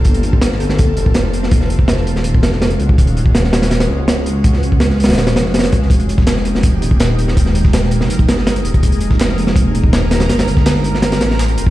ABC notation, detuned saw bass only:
X:1
M:4/4
L:1/16
Q:1/4=164
K:Eb
V:1 name="Detuned saw bass" clef=bass
G,,,6- G,,, G,,,3 F,,,6- | F,,,6- F,,, E,,,3 F,,,4 _D,,2 | E,,,6- E,,, E,,,3 _D,,6- | _D,,6- D,, E,,,3 F,,,4 D,,2 |
F,,,6- F,,, F,,,3 E,,,6- | E,,,6- E,,, F,,,3 G,,,4 E,,,2 | F,,,6- F,,, F,,,3 E,,,6 | G,,,6- G,,, G,,,3 =A,,,4 F,,,2 |]